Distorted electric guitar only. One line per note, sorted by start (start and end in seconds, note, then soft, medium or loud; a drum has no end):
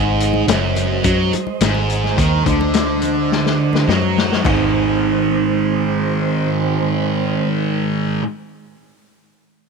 0.00 0.46 G#2 loud
0.48 1.03 F#2 loud
1.04 1.32 F#3 loud
1.33 muted distorted electric guitar stroke medium
1.61 2.17 G#2 loud
2.16 2.45 D#3 loud
2.45 3.87 D3 loud
3.87 4.44 F#3 loud
4.43 8.21 G#2 loud
4.43 8.23 D#3 medium
4.47 8.24 G#3 loud